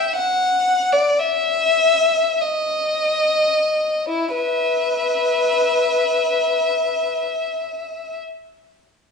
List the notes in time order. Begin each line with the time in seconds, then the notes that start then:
Already playing: E5
0.17 F#5
0.93 D5
1.19 E5
2.41 D#5
4.09 E4
4.34 B4 E5